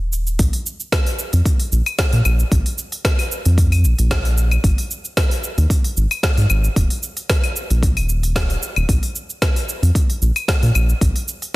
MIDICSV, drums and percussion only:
0, 0, Header, 1, 2, 480
1, 0, Start_track
1, 0, Tempo, 530973
1, 355, Time_signature, 4, 2, 24, 8
1, 10449, End_track
2, 0, Start_track
2, 0, Title_t, "Drums"
2, 116, Note_on_c, 9, 82, 74
2, 207, Note_off_c, 9, 82, 0
2, 245, Note_on_c, 9, 82, 44
2, 335, Note_off_c, 9, 82, 0
2, 353, Note_on_c, 9, 46, 70
2, 355, Note_on_c, 9, 36, 100
2, 356, Note_on_c, 9, 82, 33
2, 444, Note_off_c, 9, 46, 0
2, 446, Note_off_c, 9, 36, 0
2, 446, Note_off_c, 9, 82, 0
2, 480, Note_on_c, 9, 46, 48
2, 571, Note_off_c, 9, 46, 0
2, 599, Note_on_c, 9, 82, 74
2, 690, Note_off_c, 9, 82, 0
2, 724, Note_on_c, 9, 82, 44
2, 815, Note_off_c, 9, 82, 0
2, 835, Note_on_c, 9, 36, 99
2, 836, Note_on_c, 9, 38, 104
2, 836, Note_on_c, 9, 46, 68
2, 838, Note_on_c, 9, 82, 32
2, 925, Note_off_c, 9, 36, 0
2, 926, Note_off_c, 9, 38, 0
2, 926, Note_off_c, 9, 46, 0
2, 929, Note_off_c, 9, 82, 0
2, 962, Note_on_c, 9, 46, 48
2, 1053, Note_off_c, 9, 46, 0
2, 1075, Note_on_c, 9, 82, 80
2, 1166, Note_off_c, 9, 82, 0
2, 1202, Note_on_c, 9, 46, 32
2, 1204, Note_on_c, 9, 82, 47
2, 1292, Note_off_c, 9, 46, 0
2, 1294, Note_off_c, 9, 82, 0
2, 1315, Note_on_c, 9, 36, 106
2, 1317, Note_on_c, 9, 46, 66
2, 1320, Note_on_c, 9, 82, 32
2, 1406, Note_off_c, 9, 36, 0
2, 1408, Note_off_c, 9, 46, 0
2, 1410, Note_off_c, 9, 82, 0
2, 1442, Note_on_c, 9, 46, 46
2, 1533, Note_off_c, 9, 46, 0
2, 1559, Note_on_c, 9, 82, 74
2, 1650, Note_off_c, 9, 82, 0
2, 1685, Note_on_c, 9, 46, 34
2, 1685, Note_on_c, 9, 75, 78
2, 1687, Note_on_c, 9, 82, 45
2, 1775, Note_off_c, 9, 46, 0
2, 1775, Note_off_c, 9, 75, 0
2, 1777, Note_off_c, 9, 82, 0
2, 1795, Note_on_c, 9, 36, 107
2, 1796, Note_on_c, 9, 38, 104
2, 1796, Note_on_c, 9, 46, 70
2, 1798, Note_on_c, 9, 82, 32
2, 1885, Note_off_c, 9, 36, 0
2, 1886, Note_off_c, 9, 38, 0
2, 1886, Note_off_c, 9, 46, 0
2, 1888, Note_off_c, 9, 82, 0
2, 1921, Note_on_c, 9, 46, 44
2, 2012, Note_off_c, 9, 46, 0
2, 2036, Note_on_c, 9, 75, 76
2, 2038, Note_on_c, 9, 82, 78
2, 2126, Note_off_c, 9, 75, 0
2, 2128, Note_off_c, 9, 82, 0
2, 2164, Note_on_c, 9, 82, 46
2, 2255, Note_off_c, 9, 82, 0
2, 2275, Note_on_c, 9, 36, 111
2, 2275, Note_on_c, 9, 46, 68
2, 2278, Note_on_c, 9, 82, 35
2, 2365, Note_off_c, 9, 36, 0
2, 2366, Note_off_c, 9, 46, 0
2, 2368, Note_off_c, 9, 82, 0
2, 2403, Note_on_c, 9, 46, 44
2, 2494, Note_off_c, 9, 46, 0
2, 2516, Note_on_c, 9, 82, 77
2, 2606, Note_off_c, 9, 82, 0
2, 2642, Note_on_c, 9, 46, 32
2, 2644, Note_on_c, 9, 82, 49
2, 2732, Note_off_c, 9, 46, 0
2, 2734, Note_off_c, 9, 82, 0
2, 2754, Note_on_c, 9, 36, 110
2, 2756, Note_on_c, 9, 38, 99
2, 2756, Note_on_c, 9, 46, 66
2, 2758, Note_on_c, 9, 82, 33
2, 2845, Note_off_c, 9, 36, 0
2, 2846, Note_off_c, 9, 38, 0
2, 2846, Note_off_c, 9, 46, 0
2, 2848, Note_off_c, 9, 82, 0
2, 2883, Note_on_c, 9, 46, 46
2, 2883, Note_on_c, 9, 75, 58
2, 2973, Note_off_c, 9, 46, 0
2, 2973, Note_off_c, 9, 75, 0
2, 2999, Note_on_c, 9, 82, 81
2, 3090, Note_off_c, 9, 82, 0
2, 3122, Note_on_c, 9, 46, 32
2, 3124, Note_on_c, 9, 82, 47
2, 3213, Note_off_c, 9, 46, 0
2, 3215, Note_off_c, 9, 82, 0
2, 3234, Note_on_c, 9, 36, 107
2, 3235, Note_on_c, 9, 46, 62
2, 3238, Note_on_c, 9, 82, 33
2, 3324, Note_off_c, 9, 36, 0
2, 3326, Note_off_c, 9, 46, 0
2, 3328, Note_off_c, 9, 82, 0
2, 3363, Note_on_c, 9, 46, 45
2, 3363, Note_on_c, 9, 75, 62
2, 3454, Note_off_c, 9, 46, 0
2, 3454, Note_off_c, 9, 75, 0
2, 3476, Note_on_c, 9, 82, 77
2, 3567, Note_off_c, 9, 82, 0
2, 3603, Note_on_c, 9, 46, 31
2, 3605, Note_on_c, 9, 82, 43
2, 3693, Note_off_c, 9, 46, 0
2, 3695, Note_off_c, 9, 82, 0
2, 3714, Note_on_c, 9, 36, 112
2, 3715, Note_on_c, 9, 38, 104
2, 3715, Note_on_c, 9, 46, 64
2, 3717, Note_on_c, 9, 82, 34
2, 3805, Note_off_c, 9, 36, 0
2, 3805, Note_off_c, 9, 38, 0
2, 3805, Note_off_c, 9, 46, 0
2, 3808, Note_off_c, 9, 82, 0
2, 3842, Note_on_c, 9, 46, 44
2, 3933, Note_off_c, 9, 46, 0
2, 3956, Note_on_c, 9, 82, 84
2, 4046, Note_off_c, 9, 82, 0
2, 4081, Note_on_c, 9, 75, 76
2, 4084, Note_on_c, 9, 82, 44
2, 4172, Note_off_c, 9, 75, 0
2, 4174, Note_off_c, 9, 82, 0
2, 4194, Note_on_c, 9, 36, 115
2, 4195, Note_on_c, 9, 46, 66
2, 4197, Note_on_c, 9, 82, 38
2, 4284, Note_off_c, 9, 36, 0
2, 4285, Note_off_c, 9, 46, 0
2, 4288, Note_off_c, 9, 82, 0
2, 4323, Note_on_c, 9, 46, 45
2, 4413, Note_off_c, 9, 46, 0
2, 4438, Note_on_c, 9, 82, 76
2, 4528, Note_off_c, 9, 82, 0
2, 4563, Note_on_c, 9, 82, 46
2, 4653, Note_off_c, 9, 82, 0
2, 4674, Note_on_c, 9, 36, 105
2, 4675, Note_on_c, 9, 38, 103
2, 4675, Note_on_c, 9, 46, 66
2, 4677, Note_on_c, 9, 82, 33
2, 4765, Note_off_c, 9, 36, 0
2, 4765, Note_off_c, 9, 38, 0
2, 4765, Note_off_c, 9, 46, 0
2, 4768, Note_off_c, 9, 82, 0
2, 4802, Note_on_c, 9, 46, 43
2, 4893, Note_off_c, 9, 46, 0
2, 4917, Note_on_c, 9, 82, 88
2, 5007, Note_off_c, 9, 82, 0
2, 5044, Note_on_c, 9, 46, 31
2, 5046, Note_on_c, 9, 82, 50
2, 5134, Note_off_c, 9, 46, 0
2, 5136, Note_off_c, 9, 82, 0
2, 5153, Note_on_c, 9, 36, 111
2, 5157, Note_on_c, 9, 46, 61
2, 5159, Note_on_c, 9, 82, 31
2, 5244, Note_off_c, 9, 36, 0
2, 5247, Note_off_c, 9, 46, 0
2, 5249, Note_off_c, 9, 82, 0
2, 5283, Note_on_c, 9, 46, 44
2, 5374, Note_off_c, 9, 46, 0
2, 5398, Note_on_c, 9, 82, 87
2, 5489, Note_off_c, 9, 82, 0
2, 5523, Note_on_c, 9, 46, 30
2, 5523, Note_on_c, 9, 75, 77
2, 5526, Note_on_c, 9, 82, 47
2, 5614, Note_off_c, 9, 46, 0
2, 5614, Note_off_c, 9, 75, 0
2, 5616, Note_off_c, 9, 82, 0
2, 5634, Note_on_c, 9, 36, 111
2, 5637, Note_on_c, 9, 38, 105
2, 5637, Note_on_c, 9, 46, 64
2, 5639, Note_on_c, 9, 82, 34
2, 5724, Note_off_c, 9, 36, 0
2, 5727, Note_off_c, 9, 38, 0
2, 5727, Note_off_c, 9, 46, 0
2, 5729, Note_off_c, 9, 82, 0
2, 5763, Note_on_c, 9, 46, 43
2, 5853, Note_off_c, 9, 46, 0
2, 5874, Note_on_c, 9, 75, 78
2, 5877, Note_on_c, 9, 82, 81
2, 5965, Note_off_c, 9, 75, 0
2, 5967, Note_off_c, 9, 82, 0
2, 6004, Note_on_c, 9, 82, 50
2, 6095, Note_off_c, 9, 82, 0
2, 6114, Note_on_c, 9, 36, 101
2, 6114, Note_on_c, 9, 46, 65
2, 6117, Note_on_c, 9, 82, 36
2, 6204, Note_off_c, 9, 36, 0
2, 6205, Note_off_c, 9, 46, 0
2, 6207, Note_off_c, 9, 82, 0
2, 6241, Note_on_c, 9, 46, 44
2, 6331, Note_off_c, 9, 46, 0
2, 6355, Note_on_c, 9, 82, 77
2, 6445, Note_off_c, 9, 82, 0
2, 6479, Note_on_c, 9, 46, 27
2, 6482, Note_on_c, 9, 82, 47
2, 6570, Note_off_c, 9, 46, 0
2, 6572, Note_off_c, 9, 82, 0
2, 6595, Note_on_c, 9, 36, 109
2, 6595, Note_on_c, 9, 38, 96
2, 6595, Note_on_c, 9, 46, 63
2, 6597, Note_on_c, 9, 82, 34
2, 6685, Note_off_c, 9, 38, 0
2, 6685, Note_off_c, 9, 46, 0
2, 6686, Note_off_c, 9, 36, 0
2, 6688, Note_off_c, 9, 82, 0
2, 6722, Note_on_c, 9, 46, 41
2, 6722, Note_on_c, 9, 75, 63
2, 6812, Note_off_c, 9, 46, 0
2, 6812, Note_off_c, 9, 75, 0
2, 6837, Note_on_c, 9, 82, 85
2, 6928, Note_off_c, 9, 82, 0
2, 6964, Note_on_c, 9, 46, 29
2, 6967, Note_on_c, 9, 82, 44
2, 7055, Note_off_c, 9, 46, 0
2, 7057, Note_off_c, 9, 82, 0
2, 7075, Note_on_c, 9, 36, 106
2, 7079, Note_on_c, 9, 46, 63
2, 7081, Note_on_c, 9, 82, 32
2, 7165, Note_off_c, 9, 36, 0
2, 7169, Note_off_c, 9, 46, 0
2, 7171, Note_off_c, 9, 82, 0
2, 7203, Note_on_c, 9, 46, 44
2, 7203, Note_on_c, 9, 75, 57
2, 7293, Note_off_c, 9, 46, 0
2, 7293, Note_off_c, 9, 75, 0
2, 7317, Note_on_c, 9, 82, 86
2, 7407, Note_off_c, 9, 82, 0
2, 7443, Note_on_c, 9, 46, 29
2, 7445, Note_on_c, 9, 82, 47
2, 7533, Note_off_c, 9, 46, 0
2, 7536, Note_off_c, 9, 82, 0
2, 7555, Note_on_c, 9, 36, 111
2, 7557, Note_on_c, 9, 38, 94
2, 7557, Note_on_c, 9, 46, 61
2, 7559, Note_on_c, 9, 82, 31
2, 7645, Note_off_c, 9, 36, 0
2, 7647, Note_off_c, 9, 38, 0
2, 7647, Note_off_c, 9, 46, 0
2, 7649, Note_off_c, 9, 82, 0
2, 7683, Note_on_c, 9, 46, 40
2, 7774, Note_off_c, 9, 46, 0
2, 7798, Note_on_c, 9, 82, 82
2, 7888, Note_off_c, 9, 82, 0
2, 7923, Note_on_c, 9, 75, 78
2, 7925, Note_on_c, 9, 82, 44
2, 8013, Note_off_c, 9, 75, 0
2, 8016, Note_off_c, 9, 82, 0
2, 8035, Note_on_c, 9, 36, 104
2, 8036, Note_on_c, 9, 46, 66
2, 8038, Note_on_c, 9, 82, 34
2, 8126, Note_off_c, 9, 36, 0
2, 8126, Note_off_c, 9, 46, 0
2, 8129, Note_off_c, 9, 82, 0
2, 8161, Note_on_c, 9, 46, 44
2, 8252, Note_off_c, 9, 46, 0
2, 8277, Note_on_c, 9, 82, 75
2, 8368, Note_off_c, 9, 82, 0
2, 8405, Note_on_c, 9, 82, 45
2, 8496, Note_off_c, 9, 82, 0
2, 8515, Note_on_c, 9, 36, 97
2, 8516, Note_on_c, 9, 38, 90
2, 8516, Note_on_c, 9, 46, 60
2, 8518, Note_on_c, 9, 82, 33
2, 8606, Note_off_c, 9, 36, 0
2, 8607, Note_off_c, 9, 38, 0
2, 8607, Note_off_c, 9, 46, 0
2, 8609, Note_off_c, 9, 82, 0
2, 8644, Note_on_c, 9, 46, 44
2, 8735, Note_off_c, 9, 46, 0
2, 8760, Note_on_c, 9, 82, 82
2, 8850, Note_off_c, 9, 82, 0
2, 8887, Note_on_c, 9, 46, 30
2, 8889, Note_on_c, 9, 82, 48
2, 8977, Note_off_c, 9, 46, 0
2, 8979, Note_off_c, 9, 82, 0
2, 8996, Note_on_c, 9, 36, 102
2, 8999, Note_on_c, 9, 46, 58
2, 9001, Note_on_c, 9, 82, 30
2, 9086, Note_off_c, 9, 36, 0
2, 9089, Note_off_c, 9, 46, 0
2, 9092, Note_off_c, 9, 82, 0
2, 9127, Note_on_c, 9, 46, 44
2, 9218, Note_off_c, 9, 46, 0
2, 9241, Note_on_c, 9, 82, 77
2, 9332, Note_off_c, 9, 82, 0
2, 9365, Note_on_c, 9, 46, 31
2, 9365, Note_on_c, 9, 75, 74
2, 9367, Note_on_c, 9, 82, 43
2, 9455, Note_off_c, 9, 46, 0
2, 9455, Note_off_c, 9, 75, 0
2, 9458, Note_off_c, 9, 82, 0
2, 9476, Note_on_c, 9, 36, 104
2, 9479, Note_on_c, 9, 38, 92
2, 9479, Note_on_c, 9, 46, 62
2, 9482, Note_on_c, 9, 82, 33
2, 9567, Note_off_c, 9, 36, 0
2, 9570, Note_off_c, 9, 38, 0
2, 9570, Note_off_c, 9, 46, 0
2, 9572, Note_off_c, 9, 82, 0
2, 9606, Note_on_c, 9, 46, 41
2, 9697, Note_off_c, 9, 46, 0
2, 9720, Note_on_c, 9, 75, 82
2, 9722, Note_on_c, 9, 82, 79
2, 9810, Note_off_c, 9, 75, 0
2, 9813, Note_off_c, 9, 82, 0
2, 9847, Note_on_c, 9, 82, 42
2, 9938, Note_off_c, 9, 82, 0
2, 9956, Note_on_c, 9, 36, 98
2, 9958, Note_on_c, 9, 46, 67
2, 9960, Note_on_c, 9, 82, 35
2, 10047, Note_off_c, 9, 36, 0
2, 10048, Note_off_c, 9, 46, 0
2, 10050, Note_off_c, 9, 82, 0
2, 10085, Note_on_c, 9, 46, 44
2, 10176, Note_off_c, 9, 46, 0
2, 10199, Note_on_c, 9, 82, 73
2, 10289, Note_off_c, 9, 82, 0
2, 10325, Note_on_c, 9, 46, 30
2, 10327, Note_on_c, 9, 82, 44
2, 10416, Note_off_c, 9, 46, 0
2, 10418, Note_off_c, 9, 82, 0
2, 10449, End_track
0, 0, End_of_file